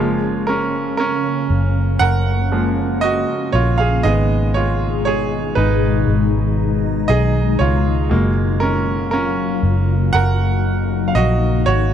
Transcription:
Already playing: F#1 C#3 F3 G#3 A#3 C#4 F4 C#5
0.47 C#4 A#4
0.97 C#4 A#4
1.50 F#1
1.99 F#1 A#4 F#5
2.52 F3 G#3 A#3
3.01 F#4 D#5
3.53 A#1 F4 C#5
3.78 G#4 F5
4.03 G#1 B2 D#3 G#3 B3 D#4 G#4 D#5
4.54 F4 C#5
5.05 G#4 C#5
5.55 G#1 D#4 B4
6.08 G#1 A#5
7.08 B1 G#4 D#5
7.59 C#2 F4 C#5
8.10 F#1 C#3 F#3 G#3 A#3 F4
8.60 C#4 A#4
9.11 C#4 A#4
9.63 F#1
10.13 F#1 D#4 A#4 F#5
11.08 F5
11.15 A#1 F#4 D#5
11.66 G#1 F#4 C#5

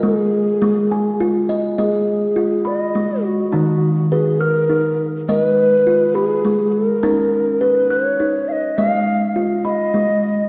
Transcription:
Already playing: D#5
0.03 G#3 G#4
0.62 G#3
0.91 G#5
1.20 F4
1.49 D#5
1.78 G#3 G#4 D#5
2.36 F4
2.65 D#5 B5
2.95 G#3
3.24 F#4
3.52 D#3 D#4 A#5
4.12 G#4 B4
4.40 A#4 F6
4.70 D#4
5.28 G#3 A#4 D#5
5.40 B4
5.87 F4
6.15 G4 B5
6.27 G#4
6.45 G#3
6.72 A#4
7.03 C#4 D#4 A#5
7.61 B4
7.90 C#5 F#6
8.20 D#4
8.48 D#5 F5
8.77 G#3 D#5 E5
8.89 F5
9.36 F4
9.65 D#5 B5
9.94 G#3

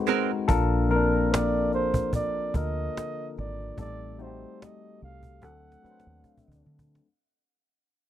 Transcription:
Already playing: G#3 C4 D#4 F#4 B4 C5
0.07 G#3 C4 F#4 A#4, cajon slap
0.31 cajon slap
0.48 A#1 A#3 D4 F4 A4 A#4, cajon bass
0.71 cajon slap
0.89 F3 A#3 C4 F4 A#4, cajon slap
0.96 D4
1.13 cajon slap
1.32 D5, cajon slap
1.54 cajon slap
1.73 C5, cajon slap
1.94 cajon bass, cajon slap
2.13 D5, cajon bass
2.39 cajon slap
2.54 D2 D3 A#3 F4 A4 A#4 D#5, cajon bass
2.78 cajon slap
2.97 cajon slap
3.37 G#1 D5, cajon slap
3.60 cajon slap
3.77 A1 G3 A3 C4 D#4 A4 D5, cajon bass
4.18 G3 A3 C4 D#4 F#4 C5, cajon slap
4.27 G4
4.42 cajon slap
4.62 D#5, cajon slap
4.82 cajon slap
5.01 C2 F5, cajon slap
5.23 cajon bass, cajon slap
5.41 D2 F#3 A3 C4 D4 A4 F#5, cajon bass, cajon slap
5.65 cajon slap
5.72 cajon slap
5.82 F#3 A3 C4 D4 B4, muted fingered electric bass stroke, cajon slap
5.86 cajon slap
5.91 C5
6.00 cajon slap
6.07 D#2
6.24 cajon bass, cajon slap
6.37 cajon bass
6.48 D2, cajon bass, cajon slap
6.65 D3, cajon slap
6.79 cajon bass
6.89 cajon slap
6.95 cajon slap

